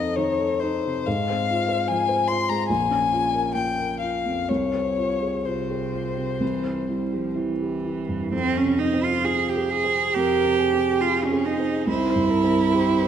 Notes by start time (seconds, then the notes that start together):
Already playing: F2 C4 D#4 D#5
0.00 A4
0.16 D#3 D#4 C#5
0.39 A4
0.59 D#4 C5
0.86 C3
1.06 G#2 F5
1.30 C4
1.51 F4
1.69 C5
1.88 F3 F4 G#5
2.09 C5
2.28 F4 C6
2.49 G#3 A#5
2.68 A#1 G#5
2.91 C#4
3.13 F4
3.34 A#4
3.54 A#3 F4 G5
3.78 A#4
4.00 F4 F5
4.26 F2
4.49 C2 C#5
4.74 C4
4.98 F4
5.21 G#4
5.44 C3 F4 C5
5.69 G#4
5.93 F4
6.17 C3
6.40 C2 E3
6.64 C4
6.89 G3 E4
7.12 F3 G4
7.35 E3 E4
7.61 G4
7.85 E4
8.09 G2
8.32 F2 C4
8.57 C#4
8.63 C3
8.79 D#4
8.94 C4
9.03 F4
9.24 F4 G#4
9.49 G4
9.55 G#4
9.70 G#4
9.84 C4
10.14 F2 G4 A#4
10.45 C3
10.59 G#4
10.73 C4
11.01 F4
11.25 C#4
11.31 G#4
11.45 D#4
11.59 C4
11.87 C2 E4 C5
12.16 G2
12.30 A#4
12.44 C4
12.72 G4 C5
13.03 C5